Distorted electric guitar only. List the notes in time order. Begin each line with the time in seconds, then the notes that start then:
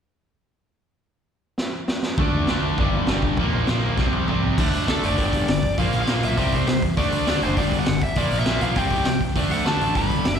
2.18 D3 A3 D4
2.48 D3 A3 D4
2.78 G2 D3 G3
3.08 G2 D3 G3
3.39 A#2 F3 A#3
3.69 A#2 F3 A#3
3.97 C3 G3 C4
4.28 C3 G3 C4
4.59 D3 A3 D4
4.87 D3 A3 D4
5.18 G2 D3 G3
5.48 G2 D3
5.78 A#2 F3 A#3
6.08 A#2 F3 A#3
6.38 C3 G3 C4
6.67 C3 G3
6.97 D3 A3 D4
7.27 D3 A3 D4
7.57 G2 D3 G3
7.87 G2 D3
8.17 A#2 F3 A#3
8.48 A#2 F3 A#3
8.77 C3 G3 C4
9.06 C3 G3
9.36 D3 A3 D4
9.65 D3 A3 D4
9.95 G2 D3 G3
10.25 G2 D3